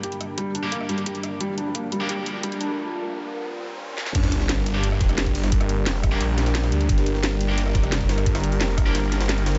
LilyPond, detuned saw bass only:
\new Staff \with { instrumentName = "Detuned saw bass" } { \clef bass \time 4/4 \key g \minor \tempo 4 = 175 r1 | r1 | r1 | g,,2~ g,,8 f,,8 f,,8 g,,8~ |
g,,4 f,,4 bes,,4. d,8 | g,,2~ g,,8 f,,8 f,,8 g,,8~ | g,,4 f,,4 g,,4. g,,8 | }